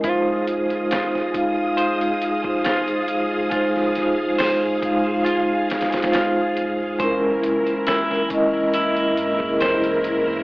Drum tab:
HH |x---x-x-x---x---x-x-x---x-x-x---|x---x---o---x---x---xxxxx---x---|x---x-x-x---x---x-x-x---x-x-x---|
SD |--------o-o-------------o-------|--o-o---o-----------ooooo-------|--------o-o-------------o-------|
BD |o-----------o---------o---------|o-----------o-------------------|o-----------o---------o---------|